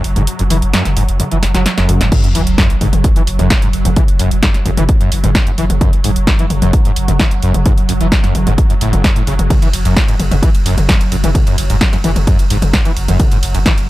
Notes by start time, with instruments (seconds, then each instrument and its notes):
Already playing: synth drone F#3
0.04 sub bass F#1, open hi-hat
0.16 sub bass F#1, acid bass G#2, closed hi-hat, mid tom
0.27 closed hi-hat
0.39 sub bass F#1, acid bass F#2, closed hi-hat
0.50 sub bass F#1, acid bass E3, open hi-hat, mid tom
0.62 sub bass F#1, closed hi-hat
0.73 acid bass F#2, snare, closed hi-hat
0.85 sub bass F#1, snare, closed hi-hat, mid tom
0.96 sub bass F#1, acid bass G#2, open hi-hat
1.08 sub bass F#1, closed hi-hat
1.20 acid bass F#2, closed hi-hat, mid tom
1.31 sub bass F#1, acid bass E3, closed hi-hat
1.43 sub bass F#1, snare, open hi-hat
1.55 sub bass F#1, acid bass F#3, snare, closed hi-hat, mid tom
1.66 snare, closed hi-hat
1.77 sub bass F#1, acid bass F#2, snare, closed hi-hat
1.89 sub bass F#1, open hi-hat, mid tom
2.00 sub bass F#1, acid bass A2, snare, closed hi-hat
2.12 synth drone F#3, kick, closed hi-hat, mid tom, crash, sub drop
2.24 sub bass F#1, acid bass F#2, closed hi-hat
2.35 sub bass F#1, acid bass E3, open hi-hat
2.47 sub bass F#1, closed hi-hat
2.58 acid bass F#2, kick, snare, closed hi-hat
2.70 sub bass F#1, closed hi-hat
2.81 sub bass F#1, acid bass G#2, open hi-hat, mid tom
2.93 sub bass F#1, closed hi-hat, mid tom
3.04 acid bass F#2, kick, closed hi-hat
3.16 sub bass F#1, acid bass E3, closed hi-hat
3.27 sub bass F#1, open hi-hat
3.39 sub bass F#1, acid bass F#2, closed hi-hat, mid tom
3.50 kick, snare, closed hi-hat
3.62 sub bass F#1, acid bass G#2, closed hi-hat
3.73 sub bass F#1, open hi-hat
3.85 sub bass F#1, acid bass F#2, closed hi-hat, mid tom
3.96 acid bass E3, kick, closed hi-hat, mid tom
4.08 sub bass F#1, closed hi-hat
4.19 sub bass F#1, acid bass F#2, open hi-hat
4.31 sub bass F#1, closed hi-hat
4.43 acid bass G#2, kick, snare, closed hi-hat
4.54 sub bass F#1, snare, closed hi-hat
4.66 sub bass F#1, acid bass F#2, open hi-hat, mid tom
4.77 sub bass F#1, acid bass E3, closed hi-hat, mid tom
4.89 kick, closed hi-hat
5.00 sub bass F#1, acid bass F#2, closed hi-hat
5.12 sub bass F#1, open hi-hat
5.24 sub bass F#1, acid bass G#2, closed hi-hat, mid tom
5.35 kick, snare, closed hi-hat
5.47 sub bass F#1, acid bass F#2, closed hi-hat
5.58 sub bass F#1, acid bass E3, open hi-hat
5.70 sub bass F#1, closed hi-hat, mid tom
5.81 acid bass F#2, kick, closed hi-hat, mid tom
5.93 sub bass F#1, closed hi-hat
6.04 sub bass F#1, acid bass G#2, open hi-hat
6.16 sub bass F#1, closed hi-hat
6.27 acid bass F#2, kick, snare, closed hi-hat
6.39 sub bass F#1, acid bass E3, closed hi-hat
6.50 sub bass F#1, open hi-hat, mid tom
6.62 sub bass F#1, acid bass F#2, closed hi-hat, mid tom
6.73 kick, closed hi-hat
6.85 sub bass F#1, acid bass G#2, closed hi-hat
6.96 sub bass F#1, open hi-hat
7.08 sub bass F#1, acid bass F#2, closed hi-hat, mid tom
7.19 acid bass E3, kick, snare, closed hi-hat
7.31 sub bass F#1, closed hi-hat
7.42 sub bass F#1, acid bass F#2, open hi-hat
7.54 sub bass F#1, closed hi-hat, mid tom
7.66 acid bass G#2, kick, closed hi-hat, mid tom
7.78 sub bass F#1, closed hi-hat
7.89 sub bass F#1, acid bass F#2, open hi-hat
8.01 sub bass F#1, acid bass E3, closed hi-hat
8.12 kick, snare, closed hi-hat
8.24 sub bass F#1, acid bass F#2, snare, closed hi-hat
8.35 sub bass F#1, open hi-hat, mid tom
8.47 sub bass F#1, acid bass G#2, closed hi-hat, mid tom
8.58 kick, closed hi-hat
8.70 sub bass F#1, acid bass F#2, closed hi-hat
8.81 sub bass F#1, acid bass A2, open hi-hat
8.93 acid bass F#1, sub bass F#1, closed hi-hat, mid tom
9.04 acid bass G#2, kick, snare, closed hi-hat
9.16 sub bass F#1, acid bass A2, closed hi-hat
9.27 sub bass F#1, acid bass C#3, open hi-hat
9.39 sub bass F#1, closed hi-hat, mid tom
9.50 acid bass F#2, kick, closed hi-hat, mid tom, ride
9.62 sub bass F#1, acid bass E3, closed hi-hat, ride
9.73 sub bass F#1, open hi-hat, ride
9.85 sub bass F#1, acid bass F#2, closed hi-hat, ride
9.96 kick, snare, closed hi-hat, ride
10.08 sub bass F#1, acid bass G#2, closed hi-hat, ride
10.19 sub bass F#1, open hi-hat, mid tom, ride
10.31 sub bass F#1, acid bass F#2, closed hi-hat, mid tom, ride
10.42 acid bass E3, kick, closed hi-hat, ride
10.54 sub bass F#1, closed hi-hat, ride
10.65 sub bass F#1, acid bass F#2, open hi-hat, ride
10.77 sub bass F#1, closed hi-hat, mid tom, ride
10.89 acid bass G#2, kick, snare, closed hi-hat, ride
11.01 sub bass F#1, closed hi-hat, ride
11.12 sub bass F#1, acid bass F#2, open hi-hat, ride
11.24 sub bass F#1, acid bass E3, closed hi-hat, mid tom, ride
11.35 kick, closed hi-hat, mid tom, ride
11.47 sub bass F#1, acid bass F#2, closed hi-hat, ride
11.58 sub bass F#1, open hi-hat, ride
11.70 sub bass F#1, acid bass G#2, closed hi-hat, ride
11.81 kick, snare, closed hi-hat, ride
11.93 sub bass F#1, acid bass F#2, snare, closed hi-hat, ride
12.04 sub bass F#1, acid bass E3, open hi-hat, mid tom, ride
12.16 sub bass F#1, closed hi-hat, mid tom, ride
12.27 acid bass F#2, kick, closed hi-hat, ride
12.39 sub bass F#1, closed hi-hat, ride
12.50 sub bass F#1, acid bass G#2, open hi-hat, ride
12.62 sub bass F#1, closed hi-hat, mid tom, ride
12.73 acid bass F#2, kick, snare, closed hi-hat, ride
12.85 sub bass F#1, acid bass E3, closed hi-hat, ride
12.96 sub bass F#1, open hi-hat, ride
13.08 sub bass F#1, acid bass F#2, closed hi-hat, mid tom, ride
13.20 kick, closed hi-hat, mid tom, ride
13.31 sub bass F#1, acid bass G#2, closed hi-hat, ride
13.43 sub bass F#1, open hi-hat, ride
13.54 sub bass F#1, acid bass F#2, closed hi-hat, ride
13.66 acid bass E3, kick, snare, closed hi-hat, ride
13.78 sub bass F#1, closed hi-hat, ride